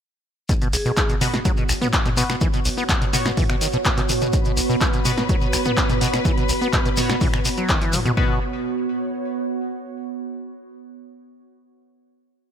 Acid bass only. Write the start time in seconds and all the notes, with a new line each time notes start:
0.49 B2
0.62 B2
0.73 B1
0.85 B2
0.97 B3
1.09 B2
1.21 B2
1.34 B2
1.45 F#3
1.58 B2
1.69 B1
1.81 B3
1.93 B3
2.06 B2
2.17 B2
2.30 B2
2.41 E3
2.54 B2
2.65 B1
2.77 B3
2.89 B2
3.01 B2
3.13 B2
3.26 B2
3.37 E3
3.50 B2
3.61 D#3
3.74 B2
3.85 B2
3.98 B2
4.09 B2
4.22 B2
4.33 B2
4.46 B2
4.57 B1
4.70 B2
4.81 B3
4.94 B2
5.05 B2
5.18 B2
5.29 F#3
5.42 B2
5.53 B1
5.66 B3
5.77 B3
5.90 B2
6.01 B2
6.14 B2
6.25 E3
6.37 B2
6.49 B1
6.61 B3
6.73 B2
6.86 B2
6.97 B2
7.10 B2
7.21 E3
7.34 B2
7.45 B2
7.58 F#3
7.69 D#3
7.82 E3
7.93 F#3
8.05 B2
8.17 B2